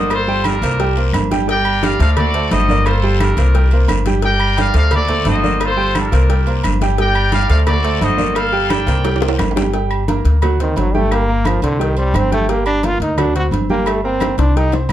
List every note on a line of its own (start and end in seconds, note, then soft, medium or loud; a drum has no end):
0.00 0.56 G1 loud
0.00 0.22 A#3 medium
0.00 0.22 A#4 medium
0.00 0.23 D5 medium
0.00 0.11 D#5 loud
0.10 0.45 F4 medium
0.10 0.77 A4 medium
0.10 0.44 C5 loud
0.10 cowbell loud
0.10 high conga soft
0.10 low agogo loud
0.10 long guiro medium
0.10 claves medium
0.28 0.56 G3 medium
0.28 0.56 G4 loud
0.28 0.56 G5 medium
0.28 high conga soft
0.44 1.11 D4 medium
0.44 1.11 F4 medium
0.44 1.10 A#4 medium
0.44 cowbell medium
0.44 high conga loud
0.44 low agogo loud
0.44 short guiro medium
0.44 claves medium
0.62 1.10 C2 loud
0.62 0.77 A#3 medium
0.62 0.77 A#4 medium
0.62 0.77 C5 medium
0.62 cowbell medium
0.62 high conga soft
0.62 low agogo medium
0.62 short guiro medium
0.79 0.94 G3 medium
0.79 0.94 G4 medium
0.79 0.94 G5 medium
0.79 cowbell loud
0.79 high conga soft
0.79 long guiro medium
0.97 1.25 A#3 medium
0.97 1.25 A#4 medium
0.97 1.25 C5 medium
0.97 high conga soft
0.97 low agogo medium
1.13 1.94 G1 loud
1.13 cowbell medium
1.13 high conga medium
1.13 low timbale medium
1.13 low agogo loud
1.13 short guiro medium
1.13 claves medium
1.31 1.45 G3 medium
1.31 1.45 G4 loud
1.31 1.46 G5 medium
1.31 cowbell medium
1.31 high conga medium
1.31 short guiro medium
1.47 1.76 G3 medium
1.47 1.76 G4 medium
1.47 1.76 G5 medium
1.47 1.82 G5 loud
1.47 cowbell loud
1.47 long guiro medium
1.51 2.14 A#4 loud
1.51 2.15 D5 medium
1.65 high conga soft
1.65 low agogo loud
1.65 claves medium
1.82 1.96 G3 medium
1.82 1.97 G4 medium
1.82 2.00 F5 loud
1.82 1.97 G5 medium
1.82 cowbell medium
1.82 high conga loud
1.82 low agogo medium
1.82 short guiro medium
2.00 2.47 D2 loud
2.00 2.28 A3 medium
2.00 2.28 A4 medium
2.00 2.28 C5 medium
2.00 2.08 F5 loud
2.00 cowbell medium
2.00 high conga soft
2.00 short guiro medium
2.17 2.52 F#4 medium
2.17 2.83 A4 medium
2.17 2.49 D5 loud
2.17 cowbell loud
2.17 high conga soft
2.17 low conga medium
2.17 low agogo loud
2.17 long guiro medium
2.17 claves medium
2.34 2.48 A3 medium
2.34 2.48 A4 medium
2.34 2.48 C5 medium
2.34 cowbell medium
2.34 high conga soft
2.51 3.31 G1 medium
2.51 2.66 A3 medium
2.51 2.84 F#4 medium
2.51 2.66 A4 medium
2.51 2.66 C5 medium
2.51 2.84 C5 medium
2.51 2.86 D#5 loud
2.51 cowbell medium
2.51 high conga medium
2.51 low agogo medium
2.51 short guiro medium
2.68 2.97 A#3 medium
2.68 2.97 A#4 medium
2.68 2.97 D5 medium
2.68 high conga medium
2.68 short guiro medium
2.85 3.21 F4 medium
2.85 3.51 A4 medium
2.85 3.20 C5 loud
2.85 cowbell loud
2.85 high conga soft
2.85 low agogo loud
2.85 long guiro medium
2.85 claves medium
3.03 3.31 G3 medium
3.03 3.31 G4 medium
3.03 3.31 G5 medium
3.03 high conga soft
3.20 3.86 D4 medium
3.20 3.86 F4 medium
3.20 3.85 A#4 medium
3.20 cowbell medium
3.20 high conga loud
3.20 low agogo loud
3.20 short guiro medium
3.20 claves medium
3.37 3.85 C2 loud
3.37 3.52 A#3 medium
3.37 3.52 A#4 medium
3.37 3.52 C5 medium
3.37 cowbell medium
3.37 high conga soft
3.37 low agogo medium
3.37 short guiro medium
3.55 3.69 G3 medium
3.55 3.69 G4 medium
3.55 3.69 G5 medium
3.55 cowbell loud
3.55 high conga soft
3.55 long guiro medium
3.71 4.00 A#3 medium
3.71 4.01 A#4 medium
3.71 4.01 C5 medium
3.71 high conga soft
3.71 low agogo medium
3.88 4.69 G1 medium
3.88 cowbell medium
3.88 high conga medium
3.88 low timbale medium
3.88 low agogo loud
3.88 short guiro medium
3.88 claves medium
4.06 4.20 G3 medium
4.06 4.20 G4 medium
4.06 4.21 G5 medium
4.06 cowbell medium
4.06 high conga medium
4.06 short guiro medium
4.22 4.52 G3 medium
4.22 4.52 G4 medium
4.22 4.89 A#4 medium
4.22 4.89 D5 medium
4.22 4.52 G5 medium
4.22 4.56 G5 loud
4.22 cowbell loud
4.22 high conga soft
4.22 long guiro medium
4.40 high conga soft
4.40 low agogo loud
4.40 claves medium
4.57 4.72 G3 medium
4.57 4.72 G4 medium
4.57 4.76 F5 loud
4.57 4.72 G5 medium
4.57 cowbell medium
4.57 high conga loud
4.57 low agogo medium
4.57 short guiro medium
4.74 5.22 D2 loud
4.74 5.03 A3 medium
4.74 5.03 A4 medium
4.74 5.03 C5 medium
4.74 4.92 F5 loud
4.74 cowbell medium
4.74 high conga soft
4.74 short guiro medium
4.91 5.26 F#4 medium
4.91 5.58 A4 medium
4.91 5.25 D5 loud
4.91 cowbell loud
4.91 high conga soft
4.91 low conga medium
4.91 low agogo loud
4.91 long guiro medium
4.91 claves medium
5.09 5.23 A3 medium
5.09 5.23 A4 medium
5.09 5.23 C5 medium
5.09 cowbell medium
5.09 high conga soft
5.09 low conga medium
5.25 6.06 G1 medium
5.25 5.40 A3 medium
5.25 5.59 F#4 medium
5.25 5.40 A4 medium
5.25 5.40 C5 medium
5.25 5.59 C5 medium
5.25 5.59 D#5 loud
5.25 cowbell medium
5.25 high conga medium
5.25 low timbale medium
5.25 low agogo medium
5.25 short guiro medium
5.43 5.71 A#3 medium
5.43 5.71 A#4 medium
5.43 5.71 D5 medium
5.43 high conga medium
5.43 short guiro medium
5.60 5.97 F4 medium
5.60 6.27 A4 medium
5.60 cowbell loud
5.60 high conga soft
5.60 low agogo loud
5.60 long guiro medium
5.60 claves medium
5.65 5.95 C5 loud
5.77 6.05 G3 medium
5.77 6.05 G4 medium
5.77 6.06 G5 medium
5.77 high conga soft
5.95 6.61 D4 medium
5.95 6.61 F4 medium
5.95 cowbell medium
5.95 high conga loud
5.95 low agogo loud
5.95 short guiro medium
5.95 claves medium
5.99 6.62 A#4 medium
6.12 6.60 C2 medium
6.12 6.26 A#3 medium
6.12 6.27 A#4 medium
6.12 6.27 C5 medium
6.12 cowbell medium
6.12 high conga soft
6.12 low agogo medium
6.12 short guiro medium
6.29 6.43 G3 medium
6.29 6.44 G4 medium
6.29 6.44 G5 medium
6.29 cowbell loud
6.29 high conga soft
6.29 long guiro medium
6.47 6.75 A#3 medium
6.47 6.75 A#4 medium
6.47 6.75 C5 medium
6.47 high conga soft
6.47 low agogo medium
6.64 7.44 G1 medium
6.64 cowbell medium
6.64 high conga medium
6.64 low agogo loud
6.64 short guiro medium
6.64 claves medium
6.81 6.95 G3 medium
6.81 6.96 G4 loud
6.81 6.96 G5 loud
6.81 cowbell medium
6.81 high conga medium
6.81 short guiro medium
6.98 7.27 G3 medium
6.98 7.27 G4 medium
6.98 7.64 A#4 medium
6.98 7.64 D5 medium
6.98 7.27 G5 medium
6.98 7.31 G5 loud
6.98 cowbell loud
6.98 high conga soft
6.98 long guiro medium
7.15 high conga soft
7.15 low agogo loud
7.15 claves medium
7.32 7.47 G3 medium
7.32 7.47 G4 medium
7.32 7.48 F5 loud
7.32 7.47 G5 medium
7.32 cowbell medium
7.32 high conga loud
7.32 low agogo medium
7.32 short guiro medium
7.49 7.98 D2 loud
7.49 7.78 A3 medium
7.49 7.78 A4 medium
7.49 7.78 C5 medium
7.49 7.57 F5 loud
7.49 cowbell medium
7.49 high conga soft
7.49 short guiro medium
7.67 8.03 F#4 medium
7.67 8.33 A4 medium
7.67 7.99 D5 medium
7.67 cowbell loud
7.67 high conga soft
7.67 low conga medium
7.67 low agogo loud
7.67 long guiro medium
7.67 claves medium
7.84 7.98 A3 medium
7.84 7.98 A4 medium
7.84 7.98 C5 medium
7.84 cowbell medium
7.84 high conga soft
8.01 8.82 G1 loud
8.01 8.15 A3 medium
8.01 8.35 F#4 medium
8.01 8.15 A4 medium
8.01 8.16 C5 medium
8.01 8.35 C5 medium
8.01 8.34 D#5 loud
8.01 cowbell medium
8.01 high conga medium
8.01 low agogo medium
8.01 short guiro medium
8.17 8.46 A#3 medium
8.17 8.46 A#4 medium
8.17 8.46 D5 medium
8.17 high conga medium
8.17 short guiro medium
8.35 9.02 A4 medium
8.35 8.70 A#4 medium
8.35 8.70 F5 loud
8.35 cowbell loud
8.35 high conga soft
8.35 low agogo loud
8.35 long guiro medium
8.35 claves medium
8.52 8.81 G3 medium
8.52 8.81 G4 medium
8.52 8.81 G5 medium
8.52 high conga soft
8.70 9.36 A#4 medium
8.70 9.36 D5 medium
8.70 9.39 G5 loud
8.70 cowbell medium
8.70 high conga loud
8.70 low agogo loud
8.70 short guiro medium
8.70 claves medium
8.86 9.35 C2 loud
8.86 9.01 A#3 medium
8.86 9.01 A#4 medium
8.86 9.01 C5 medium
8.86 cowbell medium
8.86 high conga soft
8.86 low agogo medium
8.86 short guiro medium
9.05 9.19 G3 medium
9.05 9.19 G4 medium
9.05 9.19 G5 medium
9.05 cowbell loud
9.05 high conga soft
9.05 high timbale medium
9.05 long guiro medium
9.16 high timbale medium
9.21 9.50 A#3 medium
9.21 9.50 A#4 medium
9.21 9.50 C5 medium
9.21 high bongo loud
9.21 high conga soft
9.21 low agogo medium
9.28 high timbale loud
9.38 10.19 G1 medium
9.38 cowbell medium
9.38 low bongo loud
9.38 high conga medium
9.38 low timbale loud
9.38 low agogo loud
9.38 short guiro medium
9.38 claves medium
9.51 low timbale medium
9.56 9.70 G3 medium
9.56 9.70 G4 medium
9.56 9.70 G5 medium
9.56 cowbell medium
9.56 low bongo loud
9.56 high conga medium
9.56 short guiro medium
9.62 low timbale medium
9.74 10.02 G3 medium
9.74 10.02 G4 medium
9.74 10.02 G5 medium
9.74 cowbell loud
9.74 high conga soft
9.91 high conga soft
9.91 low agogo loud
9.91 claves medium
10.08 10.36 A#3 medium
10.08 10.36 A#4 medium
10.08 10.37 A#5 medium
10.08 cowbell medium
10.08 high conga loud
10.08 low agogo medium
10.25 10.73 D2 loud
10.25 cowbell medium
10.25 high conga soft
10.42 10.57 F#3 medium
10.42 10.57 F#4 medium
10.42 10.57 F#5 medium
10.42 cowbell loud
10.42 high conga soft
10.42 low conga medium
10.42 low agogo loud
10.42 claves medium
10.60 10.80 D#3 medium
10.60 10.88 C4 medium
10.60 10.88 C5 medium
10.60 10.88 C6 medium
10.60 cowbell medium
10.60 high conga soft
10.60 low conga medium
10.76 11.57 G1 medium
10.76 10.97 F#3 medium
10.76 cowbell medium
10.76 high conga medium
10.76 low timbale medium
10.76 low agogo medium
10.95 11.23 G3 medium
10.95 11.14 A3 loud
10.95 11.23 G4 loud
10.95 11.23 G5 medium
10.95 high conga medium
11.11 11.48 A#3 loud
11.11 cowbell loud
11.11 high conga soft
11.11 low agogo loud
11.11 claves medium
11.28 11.57 A#3 medium
11.28 11.57 A#4 medium
11.28 11.57 A#5 medium
11.28 high conga soft
11.45 11.62 F3 medium
11.45 cowbell medium
11.45 high conga loud
11.45 low agogo loud
11.45 claves medium
11.62 12.10 C2 medium
11.62 11.83 D3 medium
11.62 11.77 C4 medium
11.62 11.77 C5 medium
11.62 11.77 C6 medium
11.62 cowbell medium
11.62 high conga soft
11.62 low agogo medium
11.79 11.98 D#3 medium
11.79 11.94 G3 medium
11.79 11.94 G4 medium
11.79 11.94 G5 medium
11.79 cowbell loud
11.97 12.17 G3 medium
11.97 12.25 C4 medium
11.97 12.26 C5 medium
11.97 12.26 C6 medium
11.97 high conga soft
11.97 low agogo medium
12.14 12.95 G1 loud
12.14 12.32 C4 loud
12.14 cowbell medium
12.14 high conga medium
12.14 low timbale medium
12.14 low agogo loud
12.14 claves medium
12.31 12.51 A3 medium
12.31 12.46 G4 medium
12.31 12.46 G5 medium
12.31 12.46 G6 medium
12.31 cowbell medium
12.31 high conga medium
12.49 12.77 G3 medium
12.49 12.66 A#3 medium
12.49 12.78 G4 medium
12.49 12.78 G5 medium
12.49 cowbell loud
12.66 12.87 D4 loud
12.66 high conga soft
12.66 low agogo loud
12.66 claves medium
12.83 13.12 A#3 medium
12.83 13.01 F4 loud
12.83 13.12 A#4 medium
12.83 13.12 A#5 medium
12.83 cowbell medium
12.83 high conga loud
12.83 low agogo medium
13.00 13.48 D2 medium
13.00 13.21 D#4 medium
13.00 cowbell medium
13.18 13.32 F#3 medium
13.18 13.35 D4 medium
13.18 13.32 F#4 medium
13.18 13.32 F#5 medium
13.18 cowbell loud
13.18 high conga soft
13.18 low conga medium
13.18 low agogo loud
13.18 claves medium
13.35 13.63 C4 medium
13.35 13.46 F#4 loud
13.35 13.64 C5 medium
13.35 13.63 C6 medium
13.35 cowbell medium
13.35 high conga soft
13.35 low conga medium
13.51 14.32 G1 medium
13.51 cowbell medium
13.51 high conga medium
13.51 low agogo medium
13.70 13.98 G3 medium
13.70 13.89 A#3 loud
13.70 13.98 G4 medium
13.70 13.98 G5 medium
13.70 high conga medium
13.86 14.04 A3 medium
13.86 cowbell loud
13.86 high conga soft
13.86 low agogo loud
13.86 claves medium
14.04 14.33 A#3 medium
14.04 14.36 C4 loud
14.04 14.32 A#4 medium
14.04 14.33 A#5 medium
14.04 high conga soft
14.20 cowbell medium
14.20 high bongo medium
14.20 high conga loud
14.20 low agogo loud
14.20 claves medium
14.38 14.86 C2 medium
14.38 14.52 C4 medium
14.38 14.58 D4 medium
14.38 14.53 C5 medium
14.38 14.53 C6 medium
14.38 cowbell medium
14.38 low bongo loud
14.38 low agogo medium
14.56 14.70 G3 medium
14.56 14.73 D#4 loud
14.56 14.70 G4 medium
14.56 14.70 G5 medium
14.56 cowbell loud
14.56 high conga soft
14.72 14.93 C4 medium
14.72 14.93 C5 medium
14.72 14.93 C6 medium
14.72 low bongo loud
14.72 high conga soft
14.72 low agogo medium
14.89 14.93 G1 loud
14.89 low timbale medium
14.89 low agogo loud